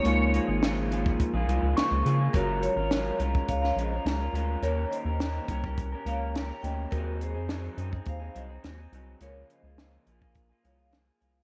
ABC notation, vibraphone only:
X:1
M:4/4
L:1/16
Q:1/4=105
K:Db
V:1 name="Vibraphone"
z16 | [GB]2 [Bd]4 z2 [df]2 [ce] z4 z | [Bd]2 [ce]4 z4 [df]2 z2 [e=g] z | [GB]2 [Ac]4 z2 [cf]2 [ce] z4 z |
[Bd]2 [ce]4 z4 [df]2 z2 [fa] z |]